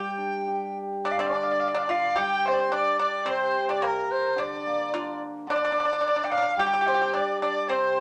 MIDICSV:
0, 0, Header, 1, 5, 480
1, 0, Start_track
1, 0, Tempo, 572519
1, 885, Time_signature, 4, 2, 24, 8
1, 1829, Tempo, 551471
1, 6894, End_track
2, 0, Start_track
2, 0, Title_t, "Dizi"
2, 0, Program_c, 0, 73
2, 0, Note_on_c, 0, 79, 72
2, 649, Note_off_c, 0, 79, 0
2, 872, Note_on_c, 0, 74, 73
2, 931, Note_on_c, 0, 77, 61
2, 943, Note_off_c, 0, 74, 0
2, 1001, Note_on_c, 0, 74, 81
2, 1013, Note_off_c, 0, 77, 0
2, 1595, Note_on_c, 0, 77, 80
2, 1607, Note_off_c, 0, 74, 0
2, 1827, Note_on_c, 0, 79, 87
2, 1840, Note_off_c, 0, 77, 0
2, 2084, Note_on_c, 0, 72, 77
2, 2097, Note_off_c, 0, 79, 0
2, 2313, Note_off_c, 0, 72, 0
2, 2319, Note_on_c, 0, 74, 83
2, 2535, Note_off_c, 0, 74, 0
2, 2540, Note_on_c, 0, 74, 72
2, 2769, Note_off_c, 0, 74, 0
2, 2790, Note_on_c, 0, 72, 75
2, 3126, Note_off_c, 0, 72, 0
2, 3155, Note_on_c, 0, 74, 75
2, 3268, Note_on_c, 0, 70, 74
2, 3281, Note_off_c, 0, 74, 0
2, 3506, Note_on_c, 0, 72, 72
2, 3519, Note_off_c, 0, 70, 0
2, 3753, Note_on_c, 0, 74, 72
2, 3766, Note_off_c, 0, 72, 0
2, 4470, Note_off_c, 0, 74, 0
2, 4711, Note_on_c, 0, 74, 84
2, 5362, Note_on_c, 0, 79, 61
2, 5375, Note_off_c, 0, 74, 0
2, 5414, Note_on_c, 0, 77, 82
2, 5427, Note_off_c, 0, 79, 0
2, 5646, Note_off_c, 0, 77, 0
2, 5652, Note_on_c, 0, 79, 87
2, 5904, Note_on_c, 0, 72, 75
2, 5917, Note_off_c, 0, 79, 0
2, 6146, Note_on_c, 0, 74, 77
2, 6160, Note_off_c, 0, 72, 0
2, 6382, Note_off_c, 0, 74, 0
2, 6387, Note_on_c, 0, 74, 72
2, 6622, Note_on_c, 0, 72, 76
2, 6635, Note_off_c, 0, 74, 0
2, 6894, Note_off_c, 0, 72, 0
2, 6894, End_track
3, 0, Start_track
3, 0, Title_t, "Erhu"
3, 0, Program_c, 1, 110
3, 882, Note_on_c, 1, 74, 68
3, 993, Note_off_c, 1, 74, 0
3, 998, Note_on_c, 1, 74, 55
3, 1060, Note_on_c, 1, 77, 54
3, 1073, Note_off_c, 1, 74, 0
3, 1133, Note_on_c, 1, 74, 57
3, 1146, Note_off_c, 1, 77, 0
3, 1198, Note_on_c, 1, 77, 55
3, 1210, Note_off_c, 1, 74, 0
3, 1272, Note_on_c, 1, 74, 61
3, 1285, Note_off_c, 1, 77, 0
3, 1337, Note_on_c, 1, 77, 63
3, 1350, Note_off_c, 1, 74, 0
3, 1411, Note_on_c, 1, 74, 54
3, 1423, Note_off_c, 1, 77, 0
3, 1477, Note_on_c, 1, 77, 52
3, 1490, Note_off_c, 1, 74, 0
3, 1532, Note_on_c, 1, 74, 68
3, 1545, Note_off_c, 1, 77, 0
3, 1826, Note_on_c, 1, 79, 78
3, 1839, Note_off_c, 1, 74, 0
3, 2067, Note_on_c, 1, 72, 66
3, 2080, Note_off_c, 1, 79, 0
3, 2131, Note_on_c, 1, 74, 53
3, 2144, Note_off_c, 1, 72, 0
3, 2189, Note_on_c, 1, 72, 66
3, 2202, Note_off_c, 1, 74, 0
3, 2308, Note_on_c, 1, 74, 66
3, 2321, Note_off_c, 1, 72, 0
3, 2540, Note_off_c, 1, 74, 0
3, 2546, Note_on_c, 1, 74, 68
3, 2790, Note_on_c, 1, 72, 70
3, 2803, Note_off_c, 1, 74, 0
3, 3155, Note_on_c, 1, 74, 69
3, 3168, Note_off_c, 1, 72, 0
3, 3276, Note_on_c, 1, 70, 60
3, 3289, Note_off_c, 1, 74, 0
3, 3740, Note_off_c, 1, 70, 0
3, 3745, Note_on_c, 1, 74, 63
3, 4432, Note_off_c, 1, 74, 0
3, 4711, Note_on_c, 1, 74, 72
3, 5152, Note_off_c, 1, 74, 0
3, 5195, Note_on_c, 1, 74, 65
3, 5430, Note_on_c, 1, 77, 73
3, 5443, Note_off_c, 1, 74, 0
3, 5671, Note_on_c, 1, 79, 82
3, 5684, Note_off_c, 1, 77, 0
3, 6149, Note_off_c, 1, 79, 0
3, 6153, Note_on_c, 1, 74, 66
3, 6374, Note_off_c, 1, 74, 0
3, 6386, Note_on_c, 1, 74, 64
3, 6610, Note_off_c, 1, 74, 0
3, 6636, Note_on_c, 1, 72, 66
3, 6894, Note_off_c, 1, 72, 0
3, 6894, End_track
4, 0, Start_track
4, 0, Title_t, "Pipa"
4, 0, Program_c, 2, 105
4, 0, Note_on_c, 2, 67, 55
4, 605, Note_off_c, 2, 67, 0
4, 880, Note_on_c, 2, 62, 67
4, 988, Note_off_c, 2, 62, 0
4, 998, Note_on_c, 2, 62, 68
4, 1441, Note_off_c, 2, 62, 0
4, 1463, Note_on_c, 2, 62, 63
4, 1578, Note_off_c, 2, 62, 0
4, 1585, Note_on_c, 2, 65, 65
4, 1807, Note_off_c, 2, 65, 0
4, 1808, Note_on_c, 2, 67, 72
4, 2266, Note_off_c, 2, 67, 0
4, 2296, Note_on_c, 2, 62, 67
4, 2526, Note_off_c, 2, 62, 0
4, 2537, Note_on_c, 2, 62, 69
4, 2766, Note_on_c, 2, 60, 71
4, 2767, Note_off_c, 2, 62, 0
4, 3114, Note_off_c, 2, 60, 0
4, 3143, Note_on_c, 2, 62, 67
4, 3256, Note_on_c, 2, 58, 60
4, 3258, Note_off_c, 2, 62, 0
4, 3711, Note_off_c, 2, 58, 0
4, 3743, Note_on_c, 2, 62, 63
4, 4194, Note_off_c, 2, 62, 0
4, 4228, Note_on_c, 2, 65, 64
4, 4451, Note_off_c, 2, 65, 0
4, 4719, Note_on_c, 2, 62, 71
4, 4758, Note_off_c, 2, 62, 0
4, 4845, Note_on_c, 2, 62, 54
4, 4898, Note_off_c, 2, 62, 0
4, 4910, Note_on_c, 2, 62, 45
4, 4962, Note_off_c, 2, 62, 0
4, 4978, Note_on_c, 2, 62, 46
4, 5012, Note_off_c, 2, 62, 0
4, 5023, Note_on_c, 2, 62, 38
4, 5079, Note_off_c, 2, 62, 0
4, 5089, Note_on_c, 2, 62, 54
4, 5147, Note_off_c, 2, 62, 0
4, 5161, Note_on_c, 2, 62, 45
4, 5208, Note_off_c, 2, 62, 0
4, 5218, Note_on_c, 2, 62, 48
4, 5275, Note_off_c, 2, 62, 0
4, 5293, Note_on_c, 2, 62, 44
4, 5344, Note_off_c, 2, 62, 0
4, 5358, Note_on_c, 2, 62, 49
4, 5409, Note_off_c, 2, 62, 0
4, 5428, Note_on_c, 2, 62, 43
4, 5469, Note_off_c, 2, 62, 0
4, 5480, Note_on_c, 2, 62, 53
4, 5512, Note_off_c, 2, 62, 0
4, 5523, Note_on_c, 2, 62, 48
4, 5585, Note_off_c, 2, 62, 0
4, 5669, Note_on_c, 2, 67, 70
4, 5721, Note_off_c, 2, 67, 0
4, 5731, Note_on_c, 2, 67, 53
4, 5782, Note_off_c, 2, 67, 0
4, 5792, Note_on_c, 2, 67, 62
4, 5848, Note_off_c, 2, 67, 0
4, 5859, Note_on_c, 2, 67, 53
4, 5905, Note_off_c, 2, 67, 0
4, 5915, Note_on_c, 2, 67, 59
4, 5963, Note_off_c, 2, 67, 0
4, 5974, Note_on_c, 2, 67, 54
4, 6026, Note_off_c, 2, 67, 0
4, 6037, Note_on_c, 2, 67, 58
4, 6101, Note_off_c, 2, 67, 0
4, 6141, Note_on_c, 2, 62, 69
4, 6368, Note_off_c, 2, 62, 0
4, 6391, Note_on_c, 2, 62, 62
4, 6613, Note_off_c, 2, 62, 0
4, 6626, Note_on_c, 2, 60, 62
4, 6894, Note_off_c, 2, 60, 0
4, 6894, End_track
5, 0, Start_track
5, 0, Title_t, "Hammered dulcimer"
5, 0, Program_c, 3, 15
5, 0, Note_on_c, 3, 55, 53
5, 148, Note_on_c, 3, 62, 38
5, 398, Note_on_c, 3, 67, 40
5, 993, Note_on_c, 3, 50, 55
5, 1123, Note_off_c, 3, 62, 0
5, 1350, Note_off_c, 3, 55, 0
5, 1361, Note_off_c, 3, 67, 0
5, 1820, Note_on_c, 3, 55, 51
5, 2425, Note_off_c, 3, 50, 0
5, 2762, Note_on_c, 3, 48, 53
5, 3267, Note_off_c, 3, 55, 0
5, 3725, Note_on_c, 3, 50, 52
5, 3738, Note_off_c, 3, 48, 0
5, 3988, Note_on_c, 3, 58, 41
5, 4224, Note_on_c, 3, 62, 41
5, 4682, Note_off_c, 3, 50, 0
5, 4692, Note_on_c, 3, 50, 55
5, 4942, Note_off_c, 3, 58, 0
5, 5179, Note_off_c, 3, 62, 0
5, 5644, Note_on_c, 3, 55, 55
5, 6137, Note_off_c, 3, 50, 0
5, 6619, Note_on_c, 3, 48, 53
5, 6894, Note_off_c, 3, 48, 0
5, 6894, Note_off_c, 3, 55, 0
5, 6894, End_track
0, 0, End_of_file